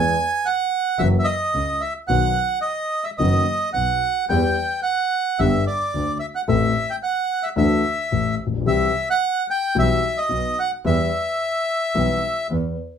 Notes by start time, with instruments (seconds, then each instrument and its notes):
Already playing: double bass E2, grand piano E2 E3 G#3 B3 G#4, bandoneon G#5
0.46 bandoneon F#5
0.99 double bass F#1, grand piano F#2 E3 F#3 A#3 C#4 F#4, bandoneon E5
1.19 bandoneon E5
1.24 bandoneon D#5
1.54 double bass C#2, grand piano C#2 C#3
1.81 bandoneon E5
2.08 grand piano B1 B2 D#3 F#3 B3 F#4, double bass B1, bandoneon F#5
2.62 bandoneon D#5
3.04 bandoneon E5
3.18 double bass F#1, grand piano F#1 F#2 D#3 F#3 B3 F#4, bandoneon D#5
3.73 grand piano B1 B2, double bass B1, bandoneon F#5
4.29 double bass E2, grand piano E2 E3 G3 B3 G4, bandoneon G5
4.83 bandoneon F#5
5.39 double bass G1, grand piano G1 G2 D3 G3 B3 G4, bandoneon E5
5.67 bandoneon D5
5.94 grand piano D2 D3, double bass D2
6.20 bandoneon E5
6.35 bandoneon F#5
6.48 grand piano A1 A2 E3 A3 C4 A4, double bass A1, bandoneon E5
6.90 bandoneon G5
7.03 bandoneon F#5
7.43 bandoneon E5
7.56 grand piano D2 D3 E3 A3 D4 F#4, double bass D2, bandoneon E5
8.12 double bass A1, grand piano A1 A2
8.40 double bass A#1
8.47 grand piano A1
8.54 grand piano A#1
8.61 grand piano B1
8.65 grand piano C2 C3 E3 G3 C4 G4, double bass C2, bandoneon E5
9.10 bandoneon F#5
9.50 bandoneon G5
9.75 double bass B1, grand piano B1 B2 E3 G3 B3 G4, bandoneon E5
10.18 bandoneon D#5
10.29 grand piano B1 B2, double bass B1
10.59 bandoneon F#5
10.85 double bass E2, grand piano E2 E3 G3 B3 G4, bandoneon E5
11.95 double bass B1, grand piano B1 B2 E3 G3 B3 G4
12.50 double bass E2, grand piano E2 E3